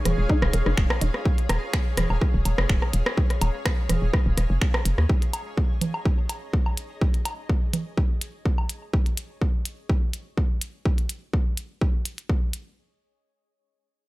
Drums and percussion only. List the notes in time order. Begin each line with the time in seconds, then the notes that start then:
0.05 cross-stick, closed hi-hat, low conga
0.29 kick
0.42 cross-stick
0.54 closed hi-hat
0.66 cross-stick
0.77 finger snap, kick
0.90 cross-stick, low woodblock
1.01 closed hi-hat
1.14 cross-stick
1.25 kick
1.38 closed hi-hat
1.49 cross-stick, closed hi-hat, low woodblock
1.73 finger snap, kick, cross-stick
1.97 cross-stick, closed hi-hat, low conga
2.10 low woodblock
2.21 kick, cross-stick
2.45 closed hi-hat, low woodblock
2.58 cross-stick
2.69 finger snap, kick
2.82 cross-stick, low woodblock
2.93 closed hi-hat
3.06 cross-stick
3.17 kick
3.30 cross-stick, closed hi-hat
3.42 closed hi-hat, low woodblock
3.66 finger snap, kick, cross-stick
3.90 cross-stick, closed hi-hat, low conga
4.14 kick, cross-stick
4.38 cross-stick, closed hi-hat
4.62 finger snap, kick
4.74 cross-stick, low woodblock
4.86 closed hi-hat
4.98 cross-stick
5.09 kick
5.22 closed hi-hat
5.33 closed hi-hat, low woodblock
5.57 kick
5.81 closed hi-hat, low conga
5.94 low woodblock
6.05 kick
6.29 closed hi-hat, low woodblock
6.53 kick
6.66 low woodblock
6.77 closed hi-hat
7.01 kick
7.14 closed hi-hat
7.25 closed hi-hat, low woodblock
7.49 kick
7.73 closed hi-hat, low conga
7.97 kick
8.21 closed hi-hat
8.46 kick
8.58 low woodblock
8.69 closed hi-hat
8.94 kick
9.06 closed hi-hat
9.17 closed hi-hat
9.41 kick
9.65 closed hi-hat
9.89 kick
10.13 closed hi-hat
10.37 kick
10.61 closed hi-hat
10.85 kick
10.98 closed hi-hat
11.09 closed hi-hat
11.33 kick
11.57 closed hi-hat
11.81 kick
12.05 closed hi-hat
12.18 closed hi-hat
12.29 kick
12.53 closed hi-hat